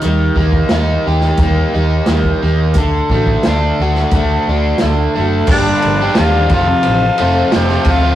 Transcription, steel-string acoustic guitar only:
X:1
M:4/4
L:1/8
Q:1/4=88
K:Gm
V:1 name="Steel-string acoustic guitar"
[E,G,B,EG] [B,EG] [G,B,EG] [B,EG] [E,G,B,EG] [B,EG] [G,B,EG] [B,EG] | [D,A,D^FA] [DFA] [A,DFA] [DFA] [D,A,DFA] [DFA] [A,DFA] [DFA] | [G,,D,F,B,DG] [F,B,DG] [G,,D,F,B,DG] [CFA] [F,CFA] [CFA] [F,CFA] [CFA] |]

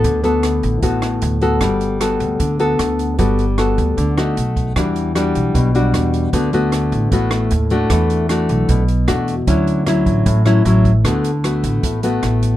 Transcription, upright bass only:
X:1
M:4/4
L:1/8
Q:1/4=153
K:D
V:1 name="Upright bass" clef=bass
D,,3 A,,, A,,,2 D,,2 | G,,,3 D,, D,,2 D,,2 | G,,,3 D,, D,,2 B,,,2 | E,,3 B,,, B,,,2 E,,2 |
D,,3 A,,, A,,,2 _E,,2 | E,,3 B,,, B,,,2 E,,2 | D,,3 A,,, A,,,2 A,,,2 | D,,3 A,,, A,,,2 A,,,2 |]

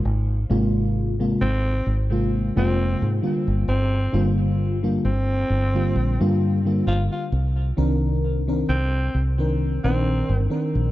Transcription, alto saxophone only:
X:1
M:4/4
L:1/16
Q:"Swing 16ths" 1/4=66
K:Gphr
V:1 name="Alto saxophone"
z6 C2 z3 C2 z3 | C2 z4 C6 z2 F F | z6 C2 z3 C2 z3 |]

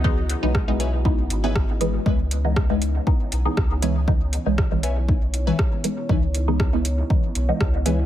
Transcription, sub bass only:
X:1
M:4/4
L:1/16
Q:"Swing 16ths" 1/4=119
K:C#m
V:1 name="Sub bass" clef=bass
C,,2 z B,,,6- B,,, G,,,4- G,,, z | C,,6- C,, z3 B,,, z C,,4- | C,,2 z B,,,8 z4 z | C,,6- C,, z3 B,,, z C,,4 |]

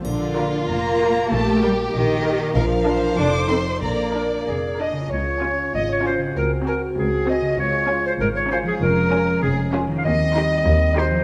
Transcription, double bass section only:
X:1
M:2/4
L:1/8
Q:1/4=97
K:Bb
V:1 name="Double bass section" clef=bass
B,,,2 F,,,2 | B,,,2 B,,,2 | B,,,2 F,,,2 | B,,,2 F,,,2 |
[K:Db] D,,2 A,,,2 | D,,2 D,,2 | D,,2 A,,,2 | F,,,2 F,,,2 |
[K:Cdor] E,,2 E,,2 |]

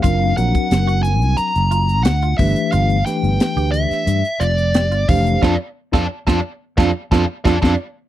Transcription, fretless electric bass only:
X:1
M:4/4
L:1/16
Q:1/4=89
K:F
V:1 name="Fretless electric bass" clef=bass
^F,,,2 ^A,,, z F,,,3 C,, z F,,,3 D,,2 G,,, z | G,,,2 z G,,, z D,,2 z G,, z F,,,3 G,,, F,,,2 | F,, z2 F,, z F,, z2 F,, z F,, z F,, F,, z2 |]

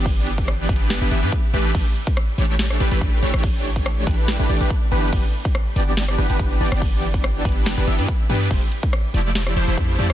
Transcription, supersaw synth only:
X:1
M:4/4
L:1/16
Q:"Swing 16ths" 1/4=142
K:Glyd
V:1 name="Supersaw synth"
[E,B,DGd]6 [E,B,DGB]3 [E,B,DGB] [E,B,DGe] [E,B,DGB] z2 [E,A,DGB]2 | [E,A,DGB] z4 z [E,A,DGc]4 [E,A,DGB] [E,A,DGB] [E,A,DGB]2 [E,A,DGc] [E,A,DGc]- | [E,A,DGc]6 [E,A,DGB]3 [E,A,DGB] [E,A,DGd] [E,A,DGB] z2 [E,B,DGB]2 | [E,B,DGB] z4 z [E,B,DGd]4 [E,B,DGB] [E,B,DGB] [E,B,DGB]2 [E,B,DGd] [E,B,DGd]- |
[E,B,DGd]6 [E,B,DGB]3 [E,B,DGB] [E,B,DGe] [E,B,DGB] z2 [E,B,DGB]2 | [=F,A,EG=c] z4 z [F,A,EGd]4 [F,A,EGc] [F,A,EGc] [F,A,EGc]2 [F,A,EGd] z |]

